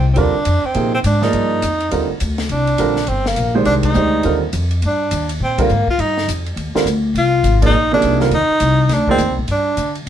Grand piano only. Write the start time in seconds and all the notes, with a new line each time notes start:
0.16 D3 G3 C4 F4 A#4
0.75 C3 F3 A#3 D#4 G#4
1.21 F3 A#3 D#4 G#4 D5
1.91 D3 G3 C4 F4 A#4
2.79 D3 G3 C4 F4 A#4
3.55 D#3 G#3 D4 G4 C5
3.94 D#3 G#3 D4 G4 C5
4.24 D3 G3 C4 F4 A#4
5.58 D3 G3 C4 F4 A#4
6.75 D3 G3 C4 F4 A#4
7.62 F3 A#3 D#4 G#4 D5
7.92 C3 F3 A#3 D#4 G#4
8.21 D3 G3 C4 F4 A#4
9.09 F3 A#3 D#4 G#4 D5